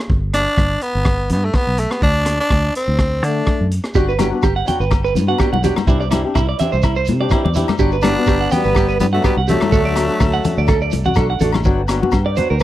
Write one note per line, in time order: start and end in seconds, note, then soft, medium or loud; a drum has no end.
0.10 0.46 G1 loud
0.10 kick medium
0.34 0.84 D4 loud
0.34 cross-stick medium
0.34 closed hi-hat soft
0.57 0.76 G1 medium
0.57 kick medium
0.57 cross-stick medium
0.81 1.30 B3 medium
0.81 closed hi-hat soft
0.95 1.32 G1 medium
1.05 kick medium
1.05 cross-stick medium
1.29 1.48 G2 medium
1.29 1.47 B3 medium
1.29 closed hi-hat medium
1.45 1.57 A3 medium
1.54 1.81 B3 medium
1.54 kick medium
1.54 cross-stick medium
1.67 1.85 B1 medium
1.78 1.93 A3 medium
1.78 closed hi-hat medium
1.91 2.02 B3 medium
1.91 cross-stick medium
2.02 2.38 D2 loud
2.02 2.37 D4 loud
2.02 kick medium
2.26 cross-stick medium
2.26 closed hi-hat medium
2.40 2.73 D4 loud
2.50 2.69 D2 medium
2.50 kick medium
2.50 cross-stick medium
2.75 3.25 C4 medium
2.75 closed hi-hat soft
2.88 3.23 D2 medium
2.99 kick medium
2.99 cross-stick medium
3.23 3.41 D3 medium
3.23 3.72 A3 medium
3.23 3.72 D4 medium
3.23 closed hi-hat medium
3.47 kick medium
3.47 cross-stick medium
3.61 3.79 F#2 medium
3.71 closed hi-hat medium
3.84 cross-stick medium
3.95 4.31 G1 loud
3.95 4.10 B3 medium
3.95 4.11 D4 medium
3.95 4.11 F#4 medium
3.95 4.05 G4 medium
3.95 muted steel-string acoustic guitar stroke medium
3.95 kick medium
3.95 shekere medium
4.09 4.17 B4 medium
4.09 shekere soft
4.18 4.32 F#3 medium
4.18 4.31 B3 medium
4.18 4.30 D4 medium
4.18 4.29 F#4 medium
4.18 4.30 G4 medium
4.18 cross-stick medium
4.18 closed hi-hat medium
4.18 high conga medium
4.18 low agogo medium
4.18 shekere medium
4.30 4.46 B3 soft
4.30 4.45 D4 medium
4.30 4.45 F#4 medium
4.42 4.61 G1 medium
4.42 4.54 G4 medium
4.42 kick medium
4.42 cross-stick medium
4.42 low agogo medium
4.42 shekere loud
4.56 4.65 F#5 medium
4.65 4.81 F#3 medium
4.65 4.82 B3 medium
4.65 4.82 D4 medium
4.65 4.83 F#4 medium
4.65 4.78 G5 medium
4.65 closed hi-hat soft
4.65 low conga medium
4.65 shekere medium
4.80 5.17 G1 medium
4.80 4.89 B4 medium
4.80 shekere soft
4.91 muted clean electric guitar stroke medium
4.91 kick medium
4.91 cross-stick medium
4.91 low agogo medium
4.91 shekere medium
5.04 5.13 B4 medium
5.04 shekere soft
5.15 5.33 G2 medium
5.15 closed hi-hat soft
5.15 high conga medium
5.15 shekere medium
5.28 5.39 B3 soft
5.28 5.39 D4 medium
5.28 5.39 F#4 medium
5.28 5.37 F#5 medium
5.38 5.54 F#3 medium
5.38 5.55 B3 medium
5.38 5.55 D4 medium
5.38 5.56 F#4 medium
5.38 5.50 G4 medium
5.38 kick medium
5.38 cross-stick medium
5.38 low agogo medium
5.38 shekere medium
5.53 5.71 B1 medium
5.53 5.61 F#5 medium
5.53 high conga medium
5.63 5.78 F#3 medium
5.63 5.79 B3 medium
5.63 5.79 D4 medium
5.63 5.79 F#4 medium
5.63 5.74 G4 medium
5.63 closed hi-hat medium
5.63 low conga medium
5.63 shekere medium
5.76 cross-stick medium
5.76 high conga medium
5.76 low agogo medium
5.76 shekere soft
5.87 6.23 C2 loud
5.87 6.02 E3 medium
5.87 6.03 C4 medium
5.87 6.03 D4 medium
5.87 5.98 E4 medium
5.87 6.03 G4 medium
5.87 kick medium
5.87 shekere medium
6.00 6.09 D5 medium
6.00 shekere soft
6.11 6.25 E3 medium
6.11 6.25 C4 medium
6.11 6.25 D4 medium
6.11 6.21 E4 medium
6.11 6.23 G4 medium
6.11 cross-stick medium
6.11 closed hi-hat medium
6.11 high conga medium
6.11 low agogo medium
6.11 shekere medium
6.24 6.39 C4 soft
6.24 6.39 D4 medium
6.24 6.38 G4 medium
6.35 6.54 C2 medium
6.35 6.46 E4 medium
6.35 kick medium
6.35 cross-stick medium
6.35 low agogo medium
6.35 shekere loud
6.49 6.57 D5 medium
6.59 6.75 E3 medium
6.59 6.75 C4 medium
6.59 6.76 D4 medium
6.59 6.76 G4 medium
6.59 6.70 E5 medium
6.59 closed hi-hat medium
6.59 low conga medium
6.59 shekere medium
6.72 7.10 C2 medium
6.72 6.81 C5 medium
6.72 shekere soft
6.82 6.94 E4 medium
6.82 kick medium
6.82 cross-stick medium
6.82 low agogo medium
6.82 shekere medium
6.95 7.05 C5 medium
6.95 shekere soft
7.05 7.26 C3 medium
7.05 closed hi-hat medium
7.05 high conga medium
7.05 shekere medium
7.21 7.32 C4 medium
7.21 7.32 D4 medium
7.21 7.32 G4 medium
7.21 7.29 D5 medium
7.30 7.47 E3 medium
7.30 7.47 C4 medium
7.30 7.48 D4 medium
7.30 7.42 E4 medium
7.30 7.48 G4 medium
7.30 kick medium
7.30 cross-stick medium
7.30 low agogo medium
7.30 shekere medium
7.45 7.63 E2 medium
7.45 7.53 D5 medium
7.45 high conga medium
7.54 7.70 E3 medium
7.54 7.71 C4 medium
7.54 7.71 D4 medium
7.54 7.66 E4 medium
7.54 7.72 G4 medium
7.54 closed hi-hat soft
7.54 low conga medium
7.54 shekere medium
7.68 cross-stick medium
7.68 high conga medium
7.68 low agogo medium
7.68 shekere soft
7.78 8.16 G1 loud
7.78 7.95 F#3 medium
7.78 7.95 B3 medium
7.78 7.95 D4 medium
7.78 7.95 F#4 medium
7.78 7.90 G4 medium
7.78 kick medium
7.78 shekere medium
7.91 8.02 B4 medium
7.91 shekere soft
8.02 8.16 F#3 medium
8.02 8.17 B3 medium
8.02 8.56 B3 medium
8.02 8.53 D4 loud
8.02 8.16 D4 medium
8.02 8.15 F#4 medium
8.02 8.14 G4 medium
8.02 cross-stick medium
8.02 closed hi-hat soft
8.02 high conga medium
8.02 low agogo medium
8.02 shekere medium
8.16 8.31 B3 soft
8.16 8.31 D4 soft
8.16 8.30 F#4 soft
8.26 8.46 G1 medium
8.26 8.38 G4 medium
8.26 kick medium
8.26 cross-stick medium
8.26 low agogo medium
8.26 shekere loud
8.41 8.49 F#5 medium
8.51 8.67 F#3 soft
8.51 9.00 G3 medium
8.51 8.99 B3 loud
8.51 8.67 B3 medium
8.51 8.68 D4 medium
8.51 8.68 F#4 medium
8.51 8.62 G5 medium
8.51 closed hi-hat soft
8.51 low conga medium
8.51 shekere medium
8.64 9.02 G1 medium
8.64 8.74 B4 medium
8.64 shekere soft
8.75 8.86 G4 medium
8.75 kick medium
8.75 cross-stick medium
8.75 low agogo medium
8.75 shekere medium
8.89 8.97 B4 medium
8.89 shekere soft
9.00 9.18 G2 medium
9.00 9.06 G3 medium
9.00 9.06 B3 medium
9.00 closed hi-hat soft
9.00 high conga medium
9.00 shekere medium
9.13 9.24 F#3 medium
9.13 9.24 A3 medium
9.13 9.22 B3 soft
9.13 9.22 D4 soft
9.13 9.23 F#4 medium
9.13 9.22 F#5 medium
9.23 9.39 F#3 medium
9.23 9.39 B3 medium
9.23 9.35 B3 medium
9.23 9.39 D4 medium
9.23 9.40 F#4 medium
9.23 9.34 G4 medium
9.23 kick medium
9.23 cross-stick medium
9.23 low agogo medium
9.23 shekere medium
9.27 9.37 G3 medium
9.37 9.55 C2 medium
9.37 9.46 F#5 medium
9.47 9.63 F#3 medium
9.47 11.13 A3 loud
9.47 9.63 B3 medium
9.47 9.64 D4 medium
9.47 9.64 F#4 medium
9.47 9.58 G4 medium
9.47 closed hi-hat soft
9.47 low conga medium
9.47 shekere medium
9.52 11.14 F#3 medium
9.61 cross-stick medium
9.61 high conga medium
9.61 low agogo medium
9.71 10.08 D2 loud
9.71 9.87 A3 medium
9.71 9.87 D4 medium
9.71 9.87 F#4 medium
9.71 9.82 A4 medium
9.71 kick medium
9.71 shekere medium
9.85 9.94 D5 medium
9.95 10.09 A3 medium
9.95 10.09 D4 medium
9.95 10.07 F#4 medium
9.95 cross-stick medium
9.95 closed hi-hat soft
9.95 low agogo medium
9.95 shekere medium
10.08 10.23 D4 soft
10.08 10.22 F#4 medium
10.08 shekere soft
10.20 10.38 D2 medium
10.20 muted clean electric guitar stroke medium
10.20 kick medium
10.20 cross-stick medium
10.20 low agogo medium
10.20 shekere medium
10.33 10.42 F#5 medium
10.33 shekere soft
10.43 10.59 A3 medium
10.43 10.59 D4 medium
10.43 10.60 F#4 medium
10.43 muted clean electric guitar stroke loud
10.43 closed hi-hat soft
10.43 high conga medium
10.43 low conga medium
10.43 shekere medium
10.58 10.93 D2 medium
10.58 10.67 D5 medium
10.58 shekere soft
10.68 10.79 A4 medium
10.68 kick medium
10.68 cross-stick medium
10.68 low agogo medium
10.68 shekere medium
10.81 10.90 D5 medium
10.81 shekere soft
10.91 11.14 C2 medium
10.91 closed hi-hat soft
10.91 high conga medium
10.91 shekere medium
11.04 11.16 F#4 medium
11.04 11.14 F#5 medium
11.04 low conga medium
11.04 shekere soft
11.15 11.38 B1 medium
11.15 11.32 A3 medium
11.15 11.32 D4 medium
11.15 11.33 F#4 medium
11.15 11.27 A4 medium
11.15 kick medium
11.15 cross-stick medium
11.15 low agogo medium
11.15 shekere medium
11.30 11.38 F#5 medium
11.40 11.62 A1 medium
11.40 11.56 A3 medium
11.40 11.57 D4 medium
11.40 11.57 F#4 medium
11.40 11.51 A4 medium
11.40 closed hi-hat soft
11.40 low conga medium
11.40 shekere medium
11.53 cross-stick medium
11.53 high conga medium
11.53 low agogo medium
11.53 shekere soft
11.64 12.01 G1 medium
11.64 11.80 F#3 medium
11.64 11.80 B3 medium
11.64 11.81 D4 medium
11.64 11.81 F#4 medium
11.64 12.63 B4 medium
11.64 12.63 F#5 medium
11.64 12.63 G5 medium
11.64 kick medium
11.64 shekere medium
11.88 12.02 F#3 medium
11.88 12.02 B3 medium
11.88 12.02 D4 medium
11.88 12.01 F#4 medium
11.88 cross-stick medium
11.88 closed hi-hat medium
11.88 low agogo medium
11.88 shekere medium
12.02 12.17 B3 soft
12.02 12.16 D4 soft
12.02 12.16 F#4 medium
12.02 high conga medium
12.11 12.41 G2 medium
12.11 kick medium
12.11 cross-stick medium
12.11 low agogo medium
12.11 shekere medium
12.26 12.37 D5 medium
12.36 12.52 F#3 soft
12.36 12.52 B3 medium
12.36 12.52 D4 medium
12.36 12.53 F#4 medium
12.36 12.50 C5 medium
12.36 closed hi-hat soft
12.36 low conga medium
12.36 shekere medium
12.50 12.63 D2 medium
12.50 12.61 A#4 medium
12.60 shekere medium